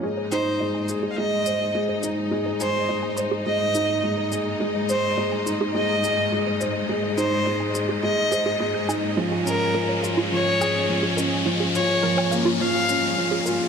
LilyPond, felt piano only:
\new Staff \with { instrumentName = "Felt piano" } { \time 4/4 \key aes \major \tempo 4 = 105 aes8 ees'8 aes8 aes'8 aes8 c''8 aes8 ees'8 | aes8 aes'8 aes8 c''8 aes8 ees'8 aes8 aes'8 | aes8 c''8 aes8 ees'8 aes8 aes'8 aes8 c''8 | aes8 ees'8 aes8 aes'8 aes8 c''8 aes8 ees'8 |
f8 des'8 f8 f'8 f8 aes'8 f8 des'8 | f8 f'8 f8 bes8 f8 des'8 f8 f'8 | }